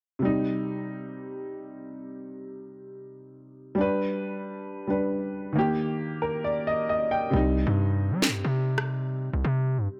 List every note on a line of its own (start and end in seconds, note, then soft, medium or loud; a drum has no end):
0.19 3.72 C3 medium
0.19 3.73 G3 medium
0.25 3.75 D#4 medium
3.75 4.85 G3 medium
3.75 4.87 D4 medium
3.81 4.88 B4 medium
4.87 5.55 G3 medium
4.87 5.56 D4 medium
4.87 5.56 B4 medium
5.53 7.28 D#3 medium
5.53 7.30 A#3 medium
5.59 7.31 G4 medium
6.22 6.43 A#4 medium
6.44 6.65 D5 medium
6.67 6.88 D#5 medium
6.89 7.10 D#5 medium
7.11 7.32 G5 medium
7.30 7.65 C2 loud
7.30 10.00 C3 medium
7.30 10.00 G3 medium
7.36 10.00 D#4 medium
7.67 8.13 G2 loud
8.11 8.29 G3 loud
8.22 snare loud
8.28 8.44 G2 loud
8.45 9.30 C3 loud
8.78 cross-stick loud
9.33 9.44 C2 loud
9.45 9.79 C3 loud
9.78 9.88 G2 loud